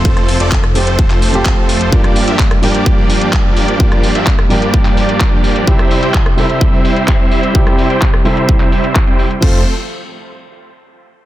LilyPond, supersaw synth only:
\new Staff \with { instrumentName = "Supersaw synth" } { \time 4/4 \key f \major \tempo 4 = 128 <f a c' a' c''>8. <f a c' a' d''>16 r8 <f a c' a' c''>8. <f a c' a' c''>8. <f a c' a' c''>4 | <f bes d' g' d''>8. <f bes d' g' e''>16 r8 <f bes d' g' d''>8. <f bes d' g' d''>8. <f bes d' g' d''>4 | <f bes d' g' d''>8. <f bes d' g' e''>16 r8 <f bes d' g' d''>8. <f bes d' g' d''>8. <f bes d' g' d''>4 | <g c' e' c'' e''>8. <g c' e' c'' g''>16 r8 <g c' e' c'' e''>8. <g c' e' c'' e''>8. <g c' e' c'' e''>4 |
<g c' e' c'' e''>8. <g c' e' c'' g''>16 r8 <g c' e' c'' e''>8. <g c' e' c'' e''>8. r16 <g c' e' c'' g''>16 r8 | <f a c' a' c''>8 r2. r8 | }